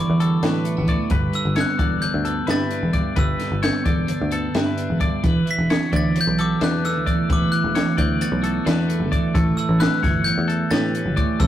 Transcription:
Already playing: E2 D3 G3 D4 D5 D6
0.10 E2
0.20 G3 A4, closed hi-hat
0.43 A2 D4 B4, snare, closed hi-hat
0.65 A3, closed hi-hat
0.77 A1 B3
0.88 A2 D5, kick, closed hi-hat
1.10 G1 G2 B4, kick, closed hi-hat
1.33 D3 E6, closed hi-hat
1.45 G1
1.56 B3 C#5, snare, closed hi-hat
1.60 F#6
1.78 E1 D3 D5, kick, closed hi-hat
2.02 D3 G6, closed hi-hat
2.14 D2
2.25 B3 A4, closed hi-hat
2.47 G2 E4 B4 A6, snare, closed hi-hat
2.71 D4, closed hi-hat
2.83 E1
2.93 G2 D5, kick, closed hi-hat
3.16 G1 G2 B4 E6, kick, closed hi-hat
3.39 D3, snare, closed hi-hat
3.52 G1
3.63 B3 C#5 G6, snare, closed hi-hat
3.85 E1 D3 D5, kick, closed hi-hat
4.07 D3, closed hi-hat
4.21 D2
4.31 B3 A4, closed hi-hat
4.55 G2 E4 B4, snare, closed hi-hat
4.77 D4, closed hi-hat
4.90 E1
4.98 G2 D5, kick, closed hi-hat
5.23 E1 E2 B4, kick, closed hi-hat
5.46 E3, closed hi-hat
5.51 B6
5.58 E1
5.70 F#3 C#5, snare, closed hi-hat
5.92 D2 E3 D5, kick, closed hi-hat
5.96 A6
6.16 B2, closed hi-hat
6.21 G6
6.27 B1
6.38 F#3 A4 D6, closed hi-hat
6.60 E2 D4 B4, snare, closed hi-hat
6.64 F#6
6.84 A3 E6, snare, closed hi-hat
6.96 D2
7.06 E2 D5, kick, closed hi-hat
7.29 E1 E2 B4 D6, kick, closed hi-hat
7.52 E3 F#6, closed hi-hat
7.64 E1
7.75 F#3 C#5, snare, closed hi-hat
7.97 D2 E3 D5 G6, kick, closed hi-hat
8.21 B2 A6, closed hi-hat
8.32 B1
8.42 F#3 A4, closed hi-hat
8.65 E2 D4 B4, snare, closed hi-hat
8.88 A3, closed hi-hat
9.00 G1
9.11 E2 D5, kick, closed hi-hat
9.34 A1 A2 A4, kick, closed hi-hat
9.57 E3 E6, closed hi-hat
9.69 A1
9.80 F#3 B4 F#6, snare, closed hi-hat
10.03 G1 E3 C#5, kick, snare, closed hi-hat
10.24 E2 G6, closed hi-hat
10.38 E2
10.48 A4, closed hi-hat
10.71 A2 G4 B4 A6, snare, closed hi-hat
10.95 C#4, closed hi-hat
11.06 G1
11.16 A2 D5, kick, closed hi-hat
11.40 A1 A2 A4 E6, kick, closed hi-hat

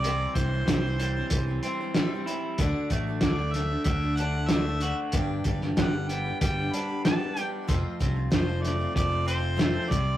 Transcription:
Already playing: C2 D5
0.03 C3 E3 G3 C4 E4 C5, closed hi-hat
0.34 C2 E3 G3 C4 E4 C5, kick, closed hi-hat
0.53 G3 C4 E4 C5
0.67 C2 C3 E3 G3 C4 E4 C5, kick, snare, closed hi-hat
0.84 G3 C4 E4 C5
0.99 G3, closed hi-hat
1.17 G3 C4 E4 C5
1.30 C2 E3, kick, closed hi-hat
1.48 G3 C4 E4 C5
1.63 G3 C4 E4 C5, closed hi-hat
1.80 G3 C4 E4 C5
1.94 C3 E3 G3 C4 E4 C5, snare, closed hi-hat
2.14 G3 C4 E4 C5
2.27 G3 C4 E4 C5, closed hi-hat
2.58 D2 D3 A3 D4 F#4, kick, closed hi-hat
2.62 D5
2.90 A1 A3 D4 F#4 D5, kick, closed hi-hat
3.07 D4 F#4 D5
3.21 D2 D3 A3 D4 F#4 D5, kick, snare, closed hi-hat
3.38 D4 F#4 D5
3.53 A3 E5, snare, closed hi-hat
3.70 D4 F#4 D5
3.84 D2 D3 E5, kick, closed hi-hat
4.02 D4 F#4 D5
4.16 A3 F#5, closed hi-hat
4.21 D4 F#4 D5
4.35 D4 F#4 D5
4.47 E5, snare, closed hi-hat
4.52 D3 A3 D4 F#4 D5
4.67 D4 F#4 D5
4.81 A3 D4 F#4 D5, closed hi-hat
5.12 G1 G2 G3 D4 G4 B4, kick, closed hi-hat
5.44 G1 D3 G3 D4 G4 B4, kick, closed hi-hat
5.61 D4 G4 B4, snare
5.76 G1 G3 D4 G4 B4 F#5, kick, snare, closed hi-hat
5.93 D4 G4 B4
6.08 B3 G5, closed hi-hat
6.25 D4 G4 B4
6.40 G1 G3 G5, kick, closed hi-hat
6.59 D4 G4 B4
6.73 G3 D4 G4 B4 B5, closed hi-hat
6.89 D4 G4 B4
7.05 G3 B3 D4 G4 B4 A5, snare, closed hi-hat
7.20 D4 G4 B4
7.37 G3 D4 G4 B4, closed hi-hat
7.67 F1 F2 F3 A3 C4 F4 C5, kick, closed hi-hat
8.00 C2 C3 A3 C4 F4 C5, kick, closed hi-hat
8.15 C4 F4 C5
8.31 F1 F3 A3 C4 F4 C5, kick, snare, closed hi-hat
8.49 C4 F4 C5
8.62 A3 D5, snare, closed hi-hat
8.79 C4 F4 C5
8.95 F1 F3 D5, kick, closed hi-hat
9.10 C4 F4 C5
9.25 A3 C4 F4 C5, closed hi-hat
9.40 C4 F4 C5
9.56 F3 A3 C4 F4 C5, snare, closed hi-hat
9.88 C2 C3 G3 C4 E4 C5 D5, kick, closed hi-hat

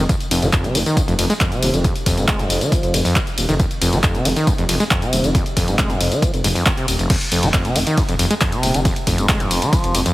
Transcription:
0.09 F2, kick, closed hi-hat, tambourine
0.20 closed hi-hat, tambourine
0.31 F1 F2, open hi-hat, ride, tambourine
0.42 F1 F3, closed hi-hat, tambourine
0.53 F1 F2, kick, clap, closed hi-hat, tambourine
0.64 C3, closed hi-hat, tambourine
0.75 F1 F3, open hi-hat, ride, tambourine
0.86 D#3, closed hi-hat, tambourine
0.97 F2, kick, closed hi-hat, tambourine
1.08 F1 F2, closed hi-hat, tambourine
1.19 F1 F2, open hi-hat, ride, tambourine
1.30 G#3, closed hi-hat, tambourine
1.41 F2, kick, clap, closed hi-hat, tambourine
1.52 C3, closed hi-hat, tambourine
1.63 D#1, open hi-hat, ride, tambourine
1.74 F1 D#3, closed hi-hat, tambourine
1.84 F2, kick, closed hi-hat, tambourine
1.96 closed hi-hat, tambourine
2.06 F1 F2, kick, open hi-hat, ride, tambourine
2.17 F1 G#2, closed hi-hat, tambourine
2.28 F1 G#3, kick, clap, closed hi-hat, tambourine
2.39 F2, closed hi-hat, tambourine
2.50 F1, open hi-hat, ride, tambourine
2.61 D#3, closed hi-hat, tambourine
2.72 F3, kick, closed hi-hat, tambourine
2.83 F1, closed hi-hat, tambourine
2.94 F1 F2, open hi-hat, ride, tambourine
3.05 F2, open hi-hat, tambourine
3.16 G2, kick, clap, closed hi-hat
3.27 closed hi-hat, tambourine
3.38 D#1, open hi-hat, ride, tambourine
3.49 F1 D#3, closed hi-hat, tambourine
3.60 F2, kick, closed hi-hat, tambourine
3.71 closed hi-hat, tambourine
3.81 F1 F2, open hi-hat, ride, tambourine
3.93 F1 F3, closed hi-hat, tambourine
4.03 F1 F2, kick, clap, closed hi-hat, tambourine
4.15 C3, closed hi-hat, tambourine
4.25 F1 F3, open hi-hat, ride, tambourine
4.36 D#3, closed hi-hat, tambourine
4.47 F2, kick, closed hi-hat, tambourine
4.58 F1 F2, closed hi-hat, tambourine
4.69 F1 F2, open hi-hat, ride, tambourine
4.80 G#3, closed hi-hat, tambourine
4.91 F2, kick, clap, closed hi-hat, tambourine
5.02 C3, closed hi-hat, tambourine
5.13 D#1, open hi-hat, ride, tambourine
5.24 F1 D#3, closed hi-hat, tambourine
5.35 F2, kick, closed hi-hat, tambourine
5.46 closed hi-hat, tambourine
5.57 F1 F2, kick, open hi-hat, ride, tambourine
5.68 F1 G#2, closed hi-hat, tambourine
5.79 F1 G#3, kick, clap, closed hi-hat, tambourine
5.90 F2, closed hi-hat, tambourine
6.01 F1, open hi-hat, ride, tambourine
6.12 D#3, closed hi-hat, tambourine
6.22 F3, kick, closed hi-hat, tambourine
6.34 F1, closed hi-hat, tambourine
6.44 F1 G#2, open hi-hat, ride, tambourine
6.55 F2, open hi-hat, tambourine
6.66 kick, clap, closed hi-hat, tambourine
6.77 C3, closed hi-hat, tambourine
6.88 D#1, open hi-hat, ride, tambourine
6.99 F1, closed hi-hat, tambourine
7.10 F2, kick, closed hi-hat, crash, ride, tambourine
7.21 open hi-hat, ride, tambourine
7.32 F1 F2, open hi-hat, ride, tambourine
7.43 F1 F3, closed hi-hat, ride, tambourine
7.54 F1 F2, kick, clap, closed hi-hat, ride, tambourine
7.65 C3, closed hi-hat, ride, tambourine
7.76 F1 F3, open hi-hat, ride, tambourine
7.87 D#3, closed hi-hat, ride, tambourine
7.97 F2, kick, closed hi-hat, ride, tambourine
8.09 F1 F2, closed hi-hat, ride, tambourine
8.19 F1 F2, open hi-hat, ride, tambourine
8.31 G#3, closed hi-hat, ride, tambourine
8.41 F2, kick, clap, closed hi-hat, ride, tambourine
8.52 C3, closed hi-hat, ride, tambourine
8.63 D#1, open hi-hat, ride, tambourine
8.74 F1 D#3, closed hi-hat, ride, tambourine
8.85 F2, kick, closed hi-hat, ride, tambourine
8.96 closed hi-hat, ride, tambourine
9.07 F1 F2, kick, open hi-hat, ride, tambourine
9.18 F1 G#2, closed hi-hat, ride, tambourine
9.29 F1 G#3, kick, clap, closed hi-hat, ride, tambourine
9.40 F2, closed hi-hat, ride, tambourine
9.51 F1, open hi-hat, ride, tambourine
9.62 D#3, closed hi-hat, ride, tambourine
9.73 F3, kick, closed hi-hat, ride, tambourine
9.84 F1, closed hi-hat, ride, tambourine
9.95 F1 F2, open hi-hat, ride, tambourine
10.06 F2, closed hi-hat, ride, tambourine

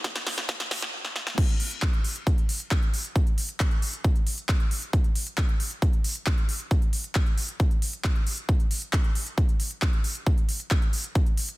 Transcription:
0.04 kick, snare, closed hi-hat
0.16 snare, closed hi-hat
0.27 snare, open hi-hat
0.38 snare
0.49 kick, snare, closed hi-hat
0.60 snare, closed hi-hat
0.71 kick, snare, open hi-hat
0.82 snare
1.05 snare
1.16 snare
1.27 snare
1.38 kick, closed hi-hat, crash
1.49 closed hi-hat
1.60 open hi-hat
1.71 closed hi-hat
1.82 kick, clap, closed hi-hat
1.93 closed hi-hat
2.04 open hi-hat
2.16 closed hi-hat
2.27 kick, closed hi-hat
2.38 closed hi-hat
2.49 open hi-hat
2.60 closed hi-hat
2.71 kick, clap, closed hi-hat
2.83 closed hi-hat
2.94 open hi-hat
3.05 closed hi-hat
3.16 kick, closed hi-hat
3.27 closed hi-hat
3.38 open hi-hat
3.49 closed hi-hat
3.60 kick, clap, closed hi-hat
3.71 closed hi-hat
3.82 open hi-hat
3.93 closed hi-hat
4.04 kick, closed hi-hat
4.16 closed hi-hat
4.27 open hi-hat
4.38 closed hi-hat
4.49 kick, clap, closed hi-hat
4.60 closed hi-hat
4.71 open hi-hat
4.82 closed hi-hat
4.93 kick, closed hi-hat
5.04 closed hi-hat
5.16 open hi-hat
5.27 closed hi-hat
5.38 kick, clap, closed hi-hat
5.49 closed hi-hat
5.60 open hi-hat
5.71 closed hi-hat
5.82 kick, closed hi-hat
5.93 closed hi-hat
6.04 open hi-hat
6.15 closed hi-hat
6.27 kick, clap, closed hi-hat
6.38 closed hi-hat
6.49 open hi-hat
6.60 closed hi-hat
6.71 kick, closed hi-hat
6.82 closed hi-hat
6.93 open hi-hat
7.04 closed hi-hat
7.15 kick, clap, closed hi-hat
7.26 closed hi-hat
7.38 open hi-hat
7.49 closed hi-hat
7.60 kick, closed hi-hat
7.71 closed hi-hat
7.82 open hi-hat
7.93 closed hi-hat
8.04 kick, clap, closed hi-hat
8.16 closed hi-hat
8.27 open hi-hat
8.38 closed hi-hat
8.49 kick, closed hi-hat
8.60 closed hi-hat
8.71 open hi-hat
8.82 closed hi-hat
8.93 kick, clap, closed hi-hat
9.04 closed hi-hat
9.15 open hi-hat
9.27 closed hi-hat
9.38 kick, closed hi-hat
9.49 closed hi-hat
9.60 open hi-hat
9.71 closed hi-hat
9.82 kick, clap, closed hi-hat
9.93 closed hi-hat
10.04 open hi-hat
10.15 closed hi-hat
10.26 kick, closed hi-hat
10.38 closed hi-hat
10.49 open hi-hat
10.60 closed hi-hat
10.71 kick, clap, closed hi-hat
10.82 closed hi-hat
10.93 open hi-hat
11.04 closed hi-hat
11.15 kick, closed hi-hat
11.26 closed hi-hat
11.37 open hi-hat
11.49 closed hi-hat

